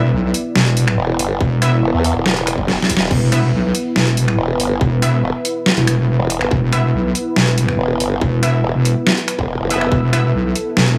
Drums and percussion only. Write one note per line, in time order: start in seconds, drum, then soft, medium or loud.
0.34 closed hi-hat medium
0.56 snare loud
0.66 closed hi-hat soft
0.77 closed hi-hat medium
0.88 finger snap medium
1.19 open hi-hat loud
1.41 kick loud
1.62 finger snap medium
1.62 closed hi-hat medium
2.04 open hi-hat medium
2.26 finger snap medium
2.26 snare loud
2.37 closed hi-hat soft
2.47 finger snap medium
2.47 closed hi-hat medium
2.58 kick medium
2.68 snare medium
2.82 snare medium
2.90 kick medium
2.90 open hi-hat loud
2.97 snare loud
3.11 kick loud
3.11 crash medium
3.32 finger snap soft
3.32 closed hi-hat medium
3.75 closed hi-hat medium
3.96 snare loud
4.07 closed hi-hat soft
4.17 closed hi-hat medium
4.28 finger snap medium
4.60 open hi-hat loud
4.81 kick loud
5.02 finger snap medium
5.02 closed hi-hat medium
5.45 closed hi-hat medium
5.66 snare loud
5.77 closed hi-hat soft
5.87 finger snap medium
5.87 closed hi-hat medium
6.30 open hi-hat medium
6.41 finger snap soft
6.51 kick loud
6.73 finger snap medium
6.73 closed hi-hat medium
7.15 closed hi-hat medium
7.36 snare loud
7.47 closed hi-hat soft
7.58 closed hi-hat medium
7.69 finger snap medium
8.00 open hi-hat medium
8.21 kick loud
8.43 finger snap medium
8.43 closed hi-hat medium
8.85 closed hi-hat medium
9.07 finger snap medium
9.07 snare loud
9.17 closed hi-hat soft
9.28 finger snap medium
9.28 closed hi-hat medium
9.39 kick medium
9.70 open hi-hat medium
9.81 finger snap medium
9.92 kick loud
10.13 finger snap medium
10.13 closed hi-hat medium
10.56 closed hi-hat medium
10.77 snare loud
10.88 closed hi-hat soft